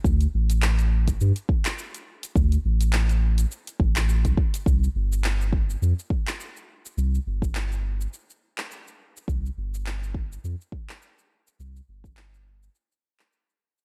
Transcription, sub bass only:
X:1
M:4/4
L:1/16
Q:"Swing 16ths" 1/4=104
K:Gm
V:1 name="Sub bass" clef=bass
D,, z A,,,6 G,, z6 z | D,, z A,,,6 z2 A,,,3 C,, z2 | C,, z G,,,6 F,, z6 z | C,, z G,,,6 z8 |
C,, z G,,,6 F,, z6 z | C,, z G,,,6 z8 |]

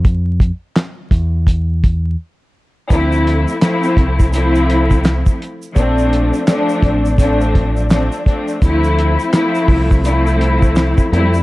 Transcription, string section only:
X:1
M:4/4
L:1/8
Q:"Swing 16ths" 1/4=84
K:Dm
V:1 name="String section"
z8 | [F,A,CE]2 [F,A,CE]2 [F,A,CE]3 z | [F,A,CD]2 [F,A,CD]2 [F,A,CD]2 [F,A,CD] [F,A,CD] | [F,A,CE]2 [F,A,CE]2 [F,A,CE]3 [G,A,CE] |]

